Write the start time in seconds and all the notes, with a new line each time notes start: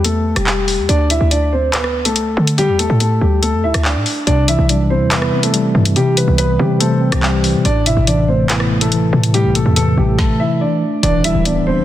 Already playing: E2
0.04 A3 A4, closed hi-hat
0.36 E1 G3 G4, cross-stick, closed hi-hat
0.47 clap
0.68 open hi-hat
0.78 E2
0.89 D2 D4 D5, closed hi-hat
1.10 E4 E5, closed hi-hat
1.21 D2
1.31 D4 D5, closed hi-hat
1.53 C4 C5
1.73 B3 B4, clap, closed hi-hat
1.84 cross-stick
2.05 C2 A3 A4, closed hi-hat
2.16 closed hi-hat
2.21 D2
2.37 D3
2.47 closed hi-hat
2.58 G3 G4, closed hi-hat
2.69 E2
2.79 A3 A4, closed hi-hat
2.90 A2
3.00 A3 A4, closed hi-hat
3.21 D2 G3 G4
3.42 A3 A4, closed hi-hat
3.53 F2
3.64 D2 E4 E5
3.74 D2, cross-stick, closed hi-hat
3.85 D4 D5, clap
3.95 A2
4.06 open hi-hat
4.27 C2 C3 D4 D5, closed hi-hat
4.48 E3 E4 E5, closed hi-hat
4.59 B1
4.69 G3 D4 D5, closed hi-hat
4.90 C4 E4 C5
5.01 E2
5.11 B3 B4 E5, clap, closed hi-hat
5.22 cross-stick
5.33 C4
5.43 A3 A4, closed hi-hat
5.54 G3, closed hi-hat
5.75 G2 E3
5.85 closed hi-hat
5.96 C3 G3 G4, closed hi-hat
6.17 E3 B3 B4, closed hi-hat
6.28 C2
6.38 G3 B3 B4, closed hi-hat
6.59 C3 G3 C4 G4
6.80 A3 A4 C5, closed hi-hat
7.01 C4
7.12 C2 G3 G4, cross-stick, closed hi-hat
7.23 G3, clap
7.44 E3, open hi-hat
7.54 C3
7.65 A1 A2 D4 D5, closed hi-hat
7.86 C3 E4 E5, closed hi-hat
7.97 A1
8.07 E3 D4 D5, closed hi-hat
8.28 A3 C4 C5
8.50 B3 E4 B4, clap, closed hi-hat
8.60 cross-stick
8.71 A3
8.81 G1 A3 A4, closed hi-hat
8.92 E3, closed hi-hat
8.97 A1
9.13 A2 C3
9.23 closed hi-hat
9.34 A2 G3 G4, closed hi-hat
9.44 B1
9.55 C3 A3 A4, closed hi-hat
9.66 E2
9.76 E3 A3 A4, closed hi-hat
9.97 A1 G3 A3 G4
10.18 A3 A4, kick, snare
10.40 E4 E5
10.61 D4 D5
11.03 E1 E3 D4 G4 D5 E5 B5, closed hi-hat, impact
11.24 G3 E4 E5, closed hi-hat
11.35 D1
11.45 B3 D4 D5, closed hi-hat
11.66 C4 D4 C5
11.77 G1